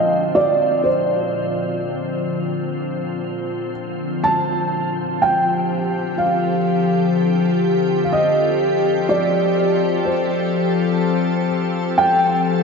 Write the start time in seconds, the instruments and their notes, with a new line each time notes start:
Already playing: ambient pad A#2 D3 F3 C4, felt piano D#5
0.35 felt piano D5
0.84 felt piano C5
4.24 felt piano A5
5.19 ambient pad G4, felt piano G5
5.95 ambient pad A4
6.18 felt piano F5
8.04 felt piano F5
8.13 felt piano D#5
9.09 felt piano D5
10.05 felt piano C5
11.98 felt piano G5